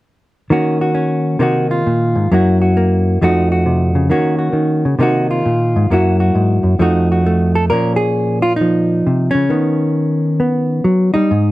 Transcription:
0.50 1.38 D#3 medium
0.50 1.39 A#3 medium
0.50 0.93 C#4 soft
0.50 0.81 F#4 medium
0.81 1.42 F#4 soft
0.95 1.38 C#4 medium
1.39 1.85 C3 medium
1.39 2.30 D#3 medium
1.39 2.28 A#3 soft
1.39 2.29 D#4 medium
1.39 1.71 F#4 medium
1.71 2.31 F4 medium
1.86 2.15 A#2 medium
2.15 2.30 G#2 medium
2.31 3.19 F#2 medium
2.31 3.22 F#3 medium
2.31 2.76 A#3 medium
2.31 3.20 E4 medium
2.31 2.61 F#4 medium
2.62 3.24 F#4 soft
2.77 3.19 A#3 medium
3.21 4.11 F2 medium
3.21 4.09 F3 medium
3.21 4.09 A3 medium
3.21 4.09 D#4 medium
3.21 3.51 F#4 medium
3.52 4.11 F#4 soft
3.66 3.95 C3 medium
3.95 4.10 C#3 medium
4.10 4.52 D#3 medium
4.10 4.98 A#3 medium
4.10 4.99 C#4 medium
4.10 4.38 F#4 medium
4.39 5.02 F#4 soft
4.53 4.83 D#3 medium
4.85 4.98 C#3 medium
4.99 5.44 C3 medium
4.99 5.90 D#3 medium
4.99 5.88 A#3 medium
4.99 5.88 D#4 medium
4.99 5.30 F#4 medium
5.31 5.90 F4 medium
5.46 5.74 A#2 medium
5.76 5.90 G#2 medium
5.90 6.35 F#2 medium
5.90 6.78 F#3 soft
5.90 6.79 A#3 medium
5.90 6.79 E4 medium
5.90 6.19 F#4 medium
6.20 6.78 F#4 soft
6.35 6.63 G#2 medium
6.63 6.79 F#2 medium
6.79 7.69 F2 medium
6.79 7.67 F3 medium
6.79 7.25 A3 medium
6.79 7.69 D#4 medium
6.79 7.10 F#4 medium
7.12 7.55 F#4 soft
7.26 7.68 A3 medium
7.55 7.64 A4 medium
7.70 9.05 A#2 medium
7.70 8.60 F3 soft
7.70 9.49 A#3 soft
7.70 8.56 C#4 soft
7.70 7.96 A#4 medium
7.96 8.42 G#4 medium
8.42 8.52 F4 medium
8.56 9.30 D#4 medium
8.61 9.48 F3 medium
9.07 9.34 C3 medium
9.31 9.50 C#3 medium
9.31 11.12 C#4 medium
9.50 10.84 D#3 medium
9.50 10.39 B3 soft
10.40 11.27 B3 medium
10.84 11.14 F#3 medium
11.14 11.30 G3 medium
11.14 11.52 D#4 medium
11.31 11.52 G#2 medium

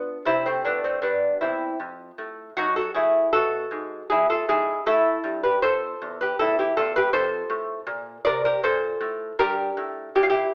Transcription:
0.00 0.17 B3 medium
0.00 0.22 D4 medium
0.00 0.22 F4 medium
0.25 0.57 C3 medium
0.25 0.44 C4 medium
0.25 0.45 E4 loud
0.46 0.64 A3 medium
0.46 0.65 C4 medium
0.65 0.95 A2 medium
0.65 0.83 B3 medium
0.65 0.84 D4 medium
0.84 1.02 A3 medium
0.84 1.03 C4 medium
1.02 1.33 G2 medium
1.02 1.38 B3 medium
1.02 1.39 D4 medium
1.41 1.72 E2 medium
1.41 1.77 C4 medium
1.41 1.78 E4 medium
1.80 2.10 F2 medium
2.18 2.49 A2 medium
2.57 2.88 F#2 medium
2.57 2.75 D#4 medium
2.57 2.76 F#4 loud
2.76 2.94 F#4 medium
2.76 2.94 A4 medium
2.94 3.26 A2 medium
2.94 3.32 E4 medium
2.94 3.32 G#4 medium
3.33 3.64 B2 medium
3.33 4.07 F#4 medium
3.33 4.07 A4 medium
3.71 4.02 G#2 medium
4.10 4.41 E2 medium
4.10 4.29 E4 medium
4.10 4.29 G#4 medium
4.30 4.48 F4 medium
4.30 4.49 A4 medium
4.49 4.79 G#2 medium
4.49 4.85 E4 medium
4.49 4.85 G#4 medium
4.86 5.17 A2 medium
4.86 5.40 E4 medium
4.86 5.41 A4 loud
5.24 5.55 G2 medium
5.43 5.62 G4 medium
5.43 5.62 B4 medium
5.62 5.93 F2 medium
5.62 6.17 A4 medium
5.62 6.18 C5 medium
6.02 6.32 E2 medium
6.21 6.39 G4 medium
6.21 6.39 B4 medium
6.39 6.70 E2 medium
6.39 6.58 E4 medium
6.39 6.58 A4 loud
6.59 6.76 E4 medium
6.59 6.77 G4 medium
6.77 7.06 E2 medium
6.77 6.94 F4 medium
6.77 6.95 A4 medium
6.96 7.13 G4 medium
6.96 7.13 B4 loud
7.13 7.42 F2 medium
7.13 8.21 A4 medium
7.13 8.20 C5 loud
7.50 7.79 A2 medium
7.87 8.17 A#2 medium
8.25 8.56 C3 medium
8.25 8.43 A#4 medium
8.25 8.44 D5 loud
8.45 8.63 G4 medium
8.45 8.64 A#4 medium
8.63 8.94 A#2 medium
8.63 9.36 A4 medium
8.63 9.37 C5 loud
9.01 9.31 A2 medium
9.39 9.70 G2 medium
9.39 10.13 G4 medium
9.39 10.13 A#4 loud
9.77 10.08 A2 medium
10.15 10.47 A#2 medium
10.15 10.23 G4 loud
10.23 10.30 F4 medium
10.30 10.53 E4 medium
10.30 10.54 G4 medium

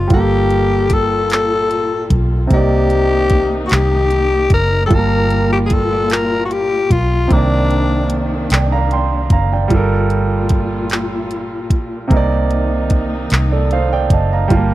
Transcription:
0.08 2.07 G1 loud
0.08 2.48 A#2 medium
0.08 2.45 G3 medium
0.08 2.48 F4 medium
0.08 2.46 F4 medium
0.08 2.48 A4 medium
0.08 kick loud
0.08 closed hi-hat medium
0.14 2.49 A#3 medium
0.14 0.95 G4 loud
0.14 2.48 A4 medium
0.50 closed hi-hat soft
0.90 1.32 A4 loud
0.90 kick medium
0.90 closed hi-hat medium
1.30 2.08 A4 medium
1.30 clap loud
1.30 closed hi-hat medium
1.71 closed hi-hat medium
2.10 2.47 B1 medium
2.10 kick medium
2.10 closed hi-hat medium
2.47 3.67 C2 loud
2.47 4.85 C3 medium
2.47 4.88 D#3 medium
2.47 4.86 A#3 medium
2.47 4.88 A#3 medium
2.47 4.88 D#4 medium
2.47 kick loud
2.47 closed hi-hat medium
2.53 4.88 D#4 medium
2.53 3.61 G4 loud
2.53 4.89 D5 medium
2.90 closed hi-hat soft
3.30 kick medium
3.30 closed hi-hat medium
3.66 3.75 F#4 medium
3.66 closed hi-hat medium
3.72 4.47 C2 medium
3.72 4.52 G4 loud
3.72 clap loud
4.11 closed hi-hat medium
4.50 4.87 F#1 medium
4.50 4.83 A#4 loud
4.50 kick medium
4.50 closed hi-hat medium
4.86 7.25 G3 medium
4.86 4.96 A4 medium
4.90 6.87 G1 loud
4.90 7.28 A#2 medium
4.90 7.28 A#3 medium
4.90 7.26 F4 medium
4.90 7.28 F4 medium
4.90 5.52 A#4 loud
4.90 7.28 A5 medium
4.90 kick loud
4.90 closed hi-hat medium
4.96 7.29 A#3 medium
5.30 closed hi-hat medium
5.53 5.58 G4 medium
5.66 5.75 G#4 medium
5.66 closed hi-hat medium
5.71 6.14 A4 loud
5.71 kick medium
6.10 6.44 A#4 loud
6.10 clap loud
6.10 closed hi-hat medium
6.45 6.54 F#4 medium
6.51 6.93 G4 medium
6.51 closed hi-hat medium
6.91 7.27 B1 medium
6.91 7.34 F4 medium
6.91 kick medium
6.91 closed hi-hat medium
7.28 8.47 C2 loud
7.28 9.65 C3 medium
7.28 9.68 D#3 medium
7.28 9.68 A#3 medium
7.28 9.67 A#3 medium
7.28 9.68 D4 medium
7.28 kick loud
7.28 closed hi-hat medium
7.33 9.68 D#3 medium
7.33 8.22 D4 medium
7.33 8.51 D5 medium
7.71 closed hi-hat soft
8.10 closed hi-hat medium
8.50 9.27 C2 medium
8.50 8.71 D5 soft
8.50 8.70 G5 medium
8.50 clap loud
8.50 closed hi-hat medium
8.72 8.91 F5 medium
8.72 8.90 A#5 medium
8.91 9.30 G5 medium
8.91 9.30 C6 medium
8.91 closed hi-hat medium
9.30 9.67 F#1 medium
9.30 9.51 F5 medium
9.30 9.51 A#5 medium
9.30 kick medium
9.30 closed hi-hat medium
9.53 9.90 D5 soft
9.53 9.90 G5 medium
9.68 11.71 G1 medium
9.68 12.08 A#2 medium
9.68 12.05 G3 medium
9.68 12.08 A#3 medium
9.68 12.08 F4 medium
9.68 12.07 F4 medium
9.68 kick loud
9.68 closed hi-hat medium
9.74 12.08 A4 medium
9.74 12.10 A#4 medium
10.10 closed hi-hat soft
10.49 kick medium
10.49 closed hi-hat medium
10.90 clap loud
10.90 closed hi-hat medium
11.31 closed hi-hat medium
11.70 12.07 B1 medium
11.70 kick medium
11.70 closed hi-hat medium
12.08 13.27 C2 loud
12.08 14.45 C3 medium
12.08 14.48 D#3 medium
12.08 14.48 A#3 medium
12.08 14.47 A#3 medium
12.08 14.48 D#4 medium
12.08 kick loud
12.08 closed hi-hat medium
12.14 14.48 D#4 medium
12.14 13.31 D5 medium
12.51 closed hi-hat medium
12.90 kick medium
12.90 closed hi-hat medium
13.30 14.07 C2 medium
13.30 clap loud
13.30 closed hi-hat medium
13.52 13.71 A4 medium
13.52 13.70 D5 medium
13.71 13.91 C5 medium
13.71 13.91 F5 medium
13.71 closed hi-hat medium
13.93 14.11 D5 medium
13.93 14.11 G5 medium
14.10 14.47 F#1 medium
14.10 14.31 D#5 medium
14.10 14.31 A5 medium
14.10 kick medium
14.10 closed hi-hat medium
14.33 14.70 F5 medium
14.33 14.70 A#5 medium
14.48 14.74 G1 medium
14.48 14.74 A#2 medium
14.48 14.74 G3 medium
14.48 14.74 A#3 medium
14.48 14.74 F4 medium
14.48 kick loud
14.48 closed hi-hat medium
14.54 14.74 A#3 medium
14.54 14.74 A5 medium

